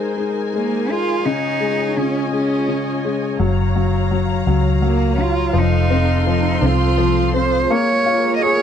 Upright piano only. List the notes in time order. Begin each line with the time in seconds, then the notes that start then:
Already playing: G#3
0.17 G#3
0.53 G#3
0.90 G#3
1.25 C#3
1.60 G#3
1.97 C#3
2.33 G#3
2.69 C#3
3.05 G#3
3.39 F#3
3.76 F#3
4.11 F#3
4.47 F#3
4.82 F#3
5.18 F#3
5.53 F3
5.90 C4
6.27 F3
6.62 C4
6.97 F3
7.34 C4
7.70 A#3
8.06 F4
8.42 G#4